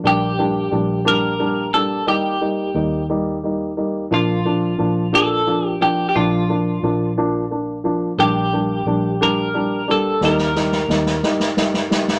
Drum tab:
SD |------------|------------|------------|------------|

SD |------------|oooooooooooo|